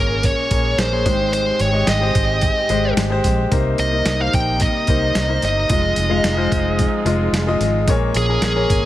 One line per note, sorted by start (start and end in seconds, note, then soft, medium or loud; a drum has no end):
0.00 0.30 G#1 medium
0.00 1.07 A#2 medium
0.00 3.48 G#3 medium
0.00 0.51 A#3 medium
0.00 1.04 A#3 medium
0.00 1.04 C#4 medium
0.00 0.51 G#4 medium
0.00 0.26 A#4 medium
0.00 0.52 C#5 medium
0.23 0.79 C#5 medium
0.23 kick medium
0.23 closed hi-hat medium
0.51 0.73 A#1 medium
0.51 0.81 A#3 medium
0.51 0.82 G#4 medium
0.51 0.82 C#5 medium
0.51 kick medium
0.51 closed hi-hat medium
0.78 1.06 A#1 medium
0.78 1.32 C5 medium
0.78 snare loud
0.78 closed hi-hat medium
0.92 1.06 A#3 medium
0.92 1.06 G#4 medium
0.92 1.06 C#5 medium
1.05 1.51 G#1 medium
1.05 1.84 G#2 medium
1.05 1.60 G#3 medium
1.05 3.49 C4 medium
1.05 1.60 G4 medium
1.05 3.49 G4 medium
1.05 1.61 C5 medium
1.05 kick medium
1.05 snare soft
1.05 closed hi-hat medium
1.33 1.59 C5 medium
1.33 closed hi-hat medium
1.59 1.83 G#1 medium
1.59 1.88 C#5 medium
1.59 closed hi-hat medium
1.73 1.94 G#3 medium
1.73 1.94 G4 medium
1.73 1.95 D#5 medium
1.87 2.10 G#1 loud
1.87 2.93 D#5 loud
1.87 snare medium
1.87 closed hi-hat medium
2.01 2.52 G#3 medium
2.01 2.52 G4 medium
2.01 2.52 C5 medium
2.15 2.49 G#1 medium
2.15 kick medium
2.15 closed hi-hat medium
2.41 kick medium
2.41 closed hi-hat medium
2.69 2.92 G#1 medium
2.69 3.00 G#3 medium
2.69 3.00 G4 medium
2.69 3.01 C5 medium
2.69 closed hi-hat medium
2.96 3.19 G#1 loud
2.96 snare loud
2.96 closed hi-hat medium
3.10 3.41 G#3 medium
3.10 3.41 G4 medium
3.10 3.42 C5 medium
3.24 3.46 A#1 medium
3.24 kick medium
3.24 snare soft
3.24 closed hi-hat medium
3.51 3.74 C2 loud
3.51 4.30 C3 medium
3.51 5.68 C3 medium
3.51 5.68 G3 medium
3.51 3.82 A#3 medium
3.51 5.68 A#3 medium
3.51 3.82 D#4 medium
3.51 7.85 D#4 medium
3.51 3.83 C5 medium
3.51 kick loud
3.51 closed hi-hat medium
3.78 4.01 C2 medium
3.78 4.05 D#5 medium
3.78 closed hi-hat medium
3.92 4.12 A#3 medium
3.92 4.13 D#4 medium
3.92 4.13 D#5 medium
4.06 4.28 C2 loud
4.06 4.21 D#5 medium
4.06 snare loud
4.06 closed hi-hat medium
4.19 4.70 A#3 medium
4.19 4.70 D#4 medium
4.19 4.71 C5 medium
4.19 4.34 F5 medium
4.33 4.67 A#1 medium
4.33 4.62 G5 medium
4.33 kick medium
4.33 closed hi-hat medium
4.60 5.43 D#5 medium
4.60 kick medium
4.60 closed hi-hat medium
4.87 5.10 C2 medium
4.87 5.18 A#3 medium
4.87 5.18 D#4 medium
4.87 5.19 C5 medium
4.87 kick medium
4.87 closed hi-hat medium
5.15 5.37 C2 medium
5.15 snare loud
5.15 closed hi-hat medium
5.28 5.59 A#3 medium
5.28 5.59 D#4 medium
5.28 5.60 C5 medium
5.42 5.65 G1 medium
5.42 7.03 D#5 medium
5.42 snare soft
5.42 closed hi-hat medium
5.69 5.92 F1 medium
5.69 7.86 F3 medium
5.69 6.00 G#3 medium
5.69 7.86 C4 medium
5.69 6.00 F4 medium
5.69 7.86 G#4 medium
5.69 6.01 D#5 medium
5.69 kick loud
5.69 closed hi-hat medium
5.96 6.19 F1 medium
5.96 closed hi-hat medium
6.10 6.30 G#3 medium
6.10 6.31 F4 medium
6.10 6.31 F5 medium
6.24 6.46 F1 medium
6.24 snare loud
6.24 closed hi-hat medium
6.37 6.88 G#3 medium
6.37 6.88 F4 medium
6.37 6.89 C5 medium
6.52 6.85 F1 medium
6.52 kick medium
6.52 closed hi-hat medium
6.79 kick loud
6.79 closed hi-hat medium
7.05 7.28 F1 loud
7.05 7.36 G#3 medium
7.05 7.36 F4 medium
7.05 7.37 D#5 medium
7.05 closed hi-hat medium
7.32 7.55 F1 loud
7.32 snare loud
7.32 closed hi-hat medium
7.47 7.77 G#3 medium
7.47 7.78 F4 medium
7.47 7.78 D#5 loud
7.60 7.87 G#1 medium
7.60 snare soft
7.60 closed hi-hat medium
7.87 8.10 A#1 loud
7.87 8.66 A#2 medium
7.87 8.85 G#3 medium
7.87 8.85 A#3 medium
7.87 8.18 A#3 medium
7.87 8.85 C#4 medium
7.87 8.19 G#4 medium
7.87 8.19 C#5 loud
7.87 kick loud
7.87 closed hi-hat medium
8.14 8.37 A#1 loud
8.14 8.43 G#4 medium
8.14 closed hi-hat medium
8.28 8.49 A#3 medium
8.28 8.49 G#4 medium
8.28 8.49 A#4 medium
8.42 8.64 A#1 loud
8.42 8.85 G#4 loud
8.42 snare medium
8.42 closed hi-hat medium
8.55 8.85 A#3 medium
8.55 8.85 G#4 medium
8.55 8.85 C#5 medium
8.70 8.85 G#1 medium
8.70 kick loud
8.70 closed hi-hat medium